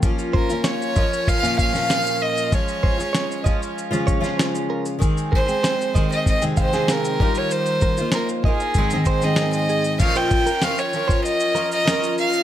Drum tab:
CC |----------------|----------------|----------------|----------------|
SH |xx-xxxxxxxxxxx-x|xx-xxxxxxxxxxx-x|xx-xxxxxxxxxxx-x|xxxxxx-xxxxxxxxx|
SD |----o------oo---|----o------oo---|----o------oo---|----o------oo---|
BD |o-o---o-o-o-----|o-o---o---o-----|o-o---o-o-o---o-|--o---o-o-o-----|

CC |x---------------|
SH |xxxxxxxxxxxxxxxx|
SD |----o-------o---|
BD |o-o----o--------|